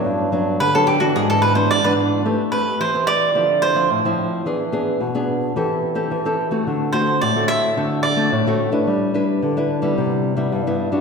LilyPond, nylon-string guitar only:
\new Staff \with { instrumentName = "Nylon-string guitar" } { \time 4/4 \key g \major \tempo 4 = 109 << { <fis b d'>8 <fis b d'>8 r16 <fis b d'>8 <e b d'>4 <e b d'>8 <e b d'>8. | <c' g' b'>16 r16 <c' g' b'>8. <c' g' b'>8. <f c' e'>8. <f c' e'>8 <f c' e'>8. | <b d' gis'>16 r16 <b d' gis'>8 r16 <b d' gis'>8. <c' g' a'>8. <c' g' a'>8 <c' g' a'>8 <a c' fis'>16~ | <a c' fis'>8 <a c' fis'>8. <a c' fis'>8. <a c' fis'>8 r16 <a c' fis'>8 <a c' fis'>8 <d' e' b'>16~ |
<d' e' b'>8 <d' e' b'>8 r16 <d' e' b'>8 <g b e'>4 <g b e'>8 <g b e'>8 <g d' fis'>16 | } \\ { g,4 d4 gis,4 gis,4 | a4 e4 d4 a,4 | e4 b,4 e4 e4 | d4 a,4 d4 a,4 |
g4 d4 c4 g,4 | } >> }